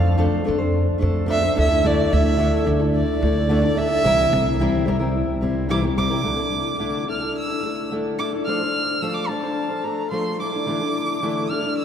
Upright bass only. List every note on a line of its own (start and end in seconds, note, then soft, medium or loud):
0.00 0.26 F2 loud
0.48 0.82 F2 medium
1.02 1.47 F2 loud
1.58 2.03 D2 loud
2.12 2.46 D2 loud
2.67 3.01 D2 loud
3.22 3.67 D2 loud
4.05 4.27 C2 medium
4.33 4.66 C2 loud
4.88 5.22 C2 loud
5.43 5.88 C2 medium
5.98 6.20 C2 medium